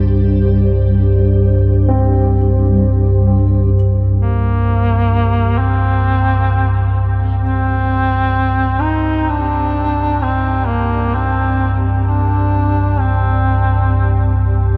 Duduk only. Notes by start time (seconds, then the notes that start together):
4.20 A#3
5.58 C4
7.44 C4
8.81 D#4
9.29 D4
10.22 C4
10.67 A#3
11.14 C4
12.06 D4
12.99 C4